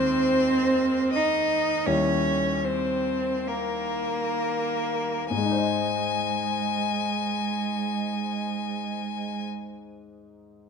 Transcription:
0.00 1.83 D#2 medium
0.00 1.83 G#3 soft
0.00 1.17 C4 medium
0.00 1.83 D#4 soft
0.00 1.13 C5 medium
0.00 1.83 C5 soft
1.13 1.87 D#4 medium
1.13 1.88 D#5 medium
1.86 5.27 D#2 medium
1.86 5.27 G3 soft
1.86 2.66 C#4 medium
1.86 5.27 E4 soft
1.86 2.65 C#5 medium
1.86 5.28 C#5 soft
2.63 3.49 C4 medium
2.63 3.49 C5 medium
3.48 5.31 A#3 medium
3.48 5.31 A#4 medium
5.31 9.43 G#2 soft
5.31 9.44 G#3 medium
5.31 9.44 G#5 medium
5.37 9.49 G#3 soft
5.45 9.57 D#4 soft
5.52 9.64 C5 soft
5.58 9.70 D#5 soft

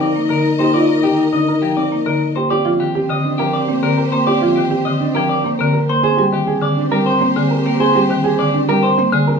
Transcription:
0.00 0.20 C4 medium
0.00 2.32 D#4 medium
0.00 2.32 A#4 medium
0.00 0.20 D5 medium
0.00 2.32 D#5 medium
0.16 0.35 A#3 medium
0.29 0.49 D3 medium
0.29 0.49 A#4 medium
0.29 0.50 A#4 medium
0.59 0.79 A#3 medium
0.59 0.79 G4 medium
0.59 0.73 C5 medium
0.74 0.94 F4 medium
0.74 0.93 D5 medium
1.03 1.23 D#3 medium
1.03 1.23 G4 medium
1.33 1.52 D3 medium
1.33 1.53 D4 medium
1.33 1.52 D#5 medium
1.48 1.67 A#4 medium
1.62 1.82 F3 medium
1.62 1.82 G4 medium
1.77 1.97 C4 medium
1.77 1.96 D5 medium
1.92 2.11 A#3 medium
2.06 2.26 D3 medium
2.06 2.26 A#4 medium
2.35 2.55 A#3 medium
2.35 2.49 G4 medium
2.35 2.50 C5 medium
2.50 5.78 C4 medium
2.50 2.70 G4 loud
2.50 5.86 G4 medium
2.50 5.85 C5 medium
2.50 2.70 D5 medium
2.65 2.85 F3 medium
2.65 2.85 F4 medium
2.80 2.99 D#3 medium
2.80 2.99 G4 medium
2.95 3.14 G4 medium
3.09 3.29 D3 medium
3.09 3.29 D#5 medium
3.25 3.44 D4 medium
3.38 3.58 F3 medium
3.38 3.58 G4 medium
3.38 3.58 A#4 medium
3.53 3.73 D5 medium
3.68 3.88 A#3 medium
3.68 3.88 C4 medium
3.83 4.02 D3 medium
3.83 4.02 A#4 loud
3.98 4.17 A#4 medium
4.12 4.32 A#3 medium
4.12 4.26 C5 medium
4.27 4.47 G4 loud
4.27 4.46 D5 medium
4.41 4.62 F3 medium
4.41 4.61 F4 medium
4.56 4.76 D#3 medium
4.56 4.76 G4 medium
4.71 4.90 G4 medium
4.85 5.06 D3 medium
4.85 5.05 D#5 medium
5.00 5.20 D4 medium
5.15 5.35 F3 medium
5.15 5.34 G4 medium
5.15 5.35 A#4 medium
5.29 5.49 D5 medium
5.44 5.65 A#3 medium
5.44 5.64 C4 medium
5.59 5.79 D3 loud
5.59 5.79 A#4 loud
5.73 5.93 A#4 medium
5.89 6.08 A#3 medium
5.89 6.03 C5 medium
6.03 9.38 C4 medium
6.03 9.39 G4 medium
6.03 6.23 G#4 loud
6.03 6.23 C5 medium
6.03 9.39 C5 medium
6.17 6.38 G3 medium
6.17 6.37 G4 medium
6.33 6.52 D#3 medium
6.33 6.53 G4 medium
6.47 6.67 G#4 medium
6.62 6.82 D3 medium
6.62 6.82 D5 medium
6.77 6.96 D4 medium
6.91 7.11 G3 medium
6.91 7.11 G4 medium
6.91 7.11 A#4 medium
7.06 7.26 C5 medium
7.21 7.41 A#3 medium
7.21 7.41 C4 medium
7.36 7.55 D3 loud
7.36 7.55 G#4 loud
7.51 7.70 A#4 medium
7.66 7.85 A#3 medium
7.66 7.85 A#4 medium
7.80 7.99 G#4 loud
7.80 8.00 C5 medium
7.95 8.15 G3 medium
7.95 8.14 G4 medium
8.09 8.29 D#3 medium
8.09 8.29 G4 medium
8.24 8.44 G#4 loud
8.39 8.59 D3 medium
8.39 8.58 D5 medium
8.54 8.73 D4 medium
8.69 8.88 G3 medium
8.69 8.88 G4 loud
8.69 8.88 A#4 loud
8.83 9.02 C5 medium
8.98 9.17 A#3 medium
8.98 9.17 C4 medium
9.12 9.32 D3 loud
9.12 9.32 G#4 loud
9.27 9.40 A#4 medium

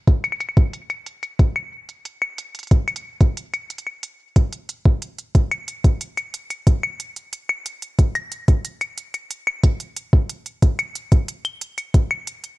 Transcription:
0.07 kick loud
0.07 closed hi-hat medium
0.24 closed hi-hat soft
0.24 claves medium
0.32 claves medium
0.40 closed hi-hat medium
0.40 claves soft
0.49 claves soft
0.57 kick loud
0.57 closed hi-hat soft
0.73 closed hi-hat medium
0.90 closed hi-hat soft
0.90 claves medium
1.06 closed hi-hat medium
1.23 closed hi-hat soft
1.23 claves soft
1.39 kick loud
1.39 closed hi-hat medium
1.56 claves medium
1.89 closed hi-hat soft
2.05 closed hi-hat medium
2.22 claves medium
2.38 closed hi-hat medium
2.55 closed hi-hat soft
2.59 closed hi-hat soft
2.63 closed hi-hat soft
2.67 closed hi-hat soft
2.71 kick loud
2.71 closed hi-hat medium
2.88 closed hi-hat soft
2.88 claves medium
2.96 closed hi-hat medium
3.21 kick loud
3.21 closed hi-hat soft
3.37 closed hi-hat medium
3.54 closed hi-hat soft
3.54 claves medium
3.70 closed hi-hat medium
3.78 closed hi-hat soft
3.87 claves soft
4.03 closed hi-hat medium
4.36 kick medium
4.36 closed hi-hat medium
4.53 closed hi-hat soft
4.69 closed hi-hat medium
4.85 kick loud
5.02 closed hi-hat medium
5.18 closed hi-hat soft
5.35 kick loud
5.35 closed hi-hat medium
5.51 closed hi-hat soft
5.51 claves medium
5.68 closed hi-hat medium
5.84 kick medium
5.84 closed hi-hat soft
6.01 closed hi-hat medium
6.17 closed hi-hat soft
6.17 claves medium
6.34 closed hi-hat medium
6.50 closed hi-hat soft
6.50 claves soft
6.67 kick loud
6.67 closed hi-hat medium
6.83 claves medium
7.00 closed hi-hat medium
7.16 closed hi-hat soft
7.33 closed hi-hat medium
7.49 claves medium
7.66 closed hi-hat medium
7.82 closed hi-hat soft
7.99 kick loud
7.99 closed hi-hat medium
8.15 closed hi-hat soft
8.15 claves medium
8.32 closed hi-hat medium
8.48 kick medium
8.48 closed hi-hat soft
8.65 closed hi-hat medium
8.81 closed hi-hat soft
8.81 claves medium
8.98 closed hi-hat medium
9.14 closed hi-hat soft
9.14 claves soft
9.31 closed hi-hat medium
9.47 claves medium
9.64 kick loud
9.64 closed hi-hat medium
9.80 closed hi-hat soft
9.96 closed hi-hat medium
10.13 kick loud
10.29 closed hi-hat medium
10.46 closed hi-hat soft
10.62 kick loud
10.62 closed hi-hat medium
10.79 closed hi-hat soft
10.79 claves medium
10.95 closed hi-hat medium
11.12 kick medium
11.12 closed hi-hat soft
11.28 closed hi-hat medium
11.45 closed hi-hat soft
11.45 claves medium
11.61 closed hi-hat medium
11.78 closed hi-hat soft
11.78 claves soft
11.94 kick loud
11.94 closed hi-hat medium
12.11 claves medium
12.27 closed hi-hat medium
12.44 closed hi-hat soft

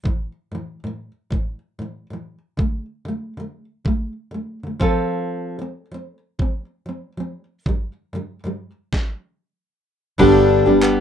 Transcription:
0.04 0.30 A2 medium
0.04 0.31 E3 medium
0.04 kick medium
0.52 0.78 A2 soft
0.52 0.79 E3 soft
0.84 1.10 A2 soft
0.84 1.11 E3 soft
1.30 1.57 A2 medium
1.30 1.58 E3 medium
1.30 kick medium
1.79 2.05 A2 soft
1.79 2.06 E3 soft
2.10 2.36 A2 soft
2.10 2.38 E3 soft
2.57 2.83 D3 soft
2.57 2.85 A3 medium
2.57 kick medium
3.05 3.31 D3 soft
3.05 3.33 A3 soft
3.37 3.63 D3 soft
3.37 3.64 A3 medium
3.85 4.11 D3 medium
3.85 4.12 A3 medium
3.85 kick medium
4.31 4.57 D3 soft
4.31 4.59 A3 soft
4.63 4.79 D3 soft
4.63 4.80 A3 soft
4.79 5.58 F3 medium
4.79 5.60 C4 medium
4.79 5.60 F4 medium
4.79 5.61 A4 medium
4.79 kick medium
5.59 5.85 F3 soft
5.59 5.86 C4 soft
5.92 6.17 F3 soft
5.92 6.18 C4 medium
6.39 6.64 F3 medium
6.39 6.66 C4 medium
6.39 kick medium
6.86 7.12 F3 soft
6.86 7.13 C4 medium
7.17 7.43 F3 soft
7.17 7.45 C4 soft
7.66 7.91 G2 medium
7.66 7.92 D3 medium
7.66 7.93 G3 medium
7.66 kick loud
8.13 8.38 G2 soft
8.13 8.39 D3 medium
8.13 8.40 G3 soft
8.44 8.70 G2 medium
8.44 8.70 D3 medium
8.44 8.71 G3 medium
8.93 kick medium
8.93 snare medium
10.18 10.63 G1 medium
10.18 10.66 G2 medium
10.18 10.66 D3 medium
10.18 10.67 G3 medium
10.18 10.67 B3 medium
10.18 11.00 B3 medium
10.18 10.66 D4 medium
10.18 10.65 G4 medium
10.18 kick loud
10.18 crash medium
10.50 11.00 D4 soft
10.66 11.00 G1 medium
10.66 11.00 G3 soft
10.66 11.00 B3 soft
10.66 11.00 D4 medium
10.66 11.00 G4 medium
10.82 11.00 B3 medium
10.82 11.00 G4 medium
10.82 clap medium

